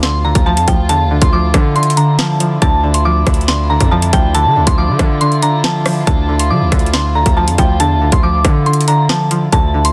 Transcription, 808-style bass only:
Already playing: D2
0.35 D2
0.57 F2
0.68 D2
0.89 E2
1.05 D2
1.22 D2
1.54 D3
2.62 D2
3.27 D2
3.81 F2
4.13 D2
4.45 D3
4.56 D2
4.67 D2
4.89 D3
4.99 D3
6.07 D2
6.50 D3
6.61 D2
6.72 D2
7.26 D2
7.47 F2
7.58 D2
7.80 E2
7.96 D2
8.12 D2
8.45 D3
9.53 D2

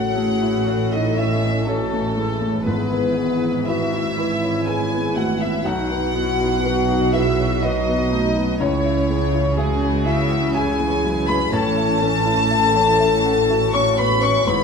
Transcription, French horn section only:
Already playing: F#4
0.92 D#4
1.18 E4
1.67 A3
2.66 B3
3.67 E4
4.67 G#4
5.17 F#4
5.40 E4
5.63 F#4
7.13 E4
7.63 D#4
8.60 C#4
9.58 G#3
10.06 E4
10.56 G#4
11.28 B4
11.53 A4
13.74 C#5
13.98 B4
14.22 C#5
14.47 B4

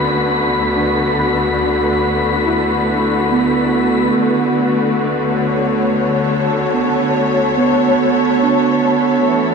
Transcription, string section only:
Already playing: D3 A3 B3 F#4 B4
5.31 C#5
6.06 A4
9.27 E3

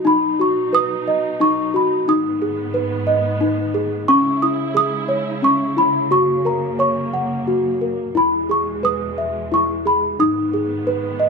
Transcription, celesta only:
0.05 D#4 B5
0.39 F#4 C#6
0.73 B4 D#6
1.07 D#5
1.40 D#4 C#6
1.74 F#4 B5
2.08 D#4 D#6
2.42 G#4
2.74 B4
3.07 D#5
3.41 D#4
3.74 G#4
4.08 C#4 C#6
4.42 E4 D#6
4.75 G#4 D#6
5.08 C#5
5.42 C#4 C#6
5.77 E4 B5
6.11 F#4 C#6
6.45 A#4 A#5
6.79 C#5 C#6
7.13 F#5
7.47 F#4
7.81 A#4
8.15 E4 B5
8.49 G#4 C#6
8.83 B4 D#6
9.18 E5
9.52 E4 C#6
9.85 G#4 B5
10.20 D#4 D#6
10.53 G#4
10.87 B4
11.20 D#5

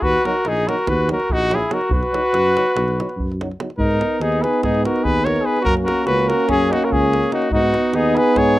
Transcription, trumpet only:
0.03 B4
0.25 A#4
0.48 G#4
0.68 A#4
0.89 B4
1.13 A#4
1.33 F#4
1.55 G#4
1.74 A#4
1.92 B4
3.79 A#4
4.22 G#4
4.43 B4
4.64 G#4
4.86 A#4
5.04 B4
5.25 C#5
5.45 B4
5.64 A#4
5.85 A#4
6.07 B4
6.29 A#4
6.50 G#4
6.72 F#4
6.84 A#4
6.92 G#4
7.34 F#4
7.54 F#4
7.96 G#4
8.17 B4
8.38 C#5

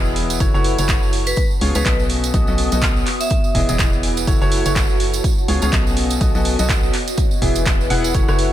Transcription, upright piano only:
Already playing: E3 B3 E4 G#4 D#5
0.40 A3 E4 F#4 C#5
0.54 A3 E4 F#4 C#5
0.79 A3 E4 F#4 C#5
1.61 C#3 B3 F4 G#4 C#5
1.75 C#3 B3 F4 G#4 C#5
1.86 B2 B3 F#4 A4 D#5
2.34 B2 B3 F#4 A4 D#5
2.48 B2 B3 F#4 A4 D#5
2.72 B2 B3 F#4 A4 D#5
3.55 E3 B3 E4 G#4 D#5
3.69 E3 B3 E4 G#4 D#5
3.79 E3 B3 E4 G#4
4.27 A3 E4 F#4 C#5
4.41 A3 E4 F#4 C#5
4.66 A3 E4 F#4 C#5
5.48 C#3 B3 F4 G#4 C#5
5.62 C#3 B3 F4 G#4 C#5
5.72 B2 B3 D#5
6.21 B2 B3 F#4 A4 D#5
6.35 B2 B3 F#4 A4 D#5
6.59 B2 B3 F#4 A4 D#5
7.42 E3 B3 E4 G#4 E5
7.90 B3 E4 G#4 F#5
8.14 A3 E4 F#4 C#5
8.28 A3 E4 F#4 C#5

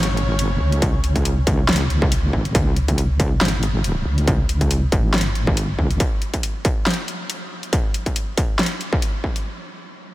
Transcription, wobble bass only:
Already playing: G#1
0.41 G1
0.60 C#2
1.47 C#2
1.90 C#2
2.33 G#1
2.55 C#2
3.41 G#1
4.06 C#2
4.92 G#1
5.79 C#2

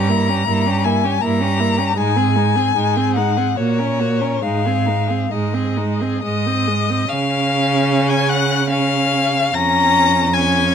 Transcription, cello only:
Already playing: G2
0.47 G2
1.23 G2
1.97 G#2
2.76 G#2
3.58 A#2
4.43 G#2
5.31 G#2
6.23 G#2
7.08 C#3
9.55 F2

